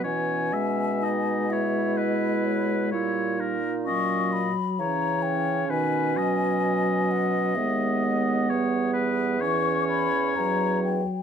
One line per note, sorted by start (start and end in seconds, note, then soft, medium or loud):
0.03 2.89 B2 soft
0.03 0.54 E3 soft
0.03 1.03 C#4 soft
0.03 0.55 C#5 soft
0.03 1.52 G#5 medium
0.53 2.95 G#3 soft
0.53 1.05 E5 soft
1.01 1.51 D#4 soft
1.01 1.54 D#5 soft
1.49 2.92 E4 soft
1.49 1.99 C#5 soft
1.49 1.97 E5 soft
1.96 2.91 B4 soft
1.96 2.47 D#5 soft
2.45 2.93 C#5 soft
2.92 4.50 A#2 soft
2.92 3.61 G3 soft
2.92 3.40 E4 soft
2.92 3.42 C#5 soft
3.39 3.88 D#4 soft
3.39 3.73 A#4 soft
3.85 4.81 F#3 soft
3.85 4.54 C#4 soft
3.85 4.52 D#5 medium
3.85 4.34 C#6 medium
4.33 4.81 B5 medium
4.79 5.72 C#3 soft
4.79 5.69 E3 soft
4.79 7.58 C#4 soft
4.79 5.72 C#5 soft
4.79 5.24 A#5 medium
5.22 5.69 G5 medium
5.69 7.58 B2 soft
5.69 6.18 D#3 soft
5.69 6.19 B4 soft
5.69 7.13 G#5 medium
6.17 7.56 F#3 soft
6.17 8.51 D#5 medium
7.11 7.57 F#5 medium
7.55 8.49 D#2 soft
7.55 8.51 G#3 soft
7.55 9.41 B3 soft
7.55 8.06 E5 medium
8.04 8.50 D#5 medium
8.49 10.33 E2 soft
8.49 9.41 G3 soft
8.49 8.93 C#5 soft
8.93 9.43 B4 soft
9.41 10.08 E3 soft
9.41 11.00 C#4 medium
9.41 11.03 C#5 medium
9.41 9.85 C#6 medium
9.89 10.38 B5 medium
10.36 11.02 E2 soft
10.36 11.23 F#3 soft
10.36 10.83 A#5 medium
10.84 11.23 G5 medium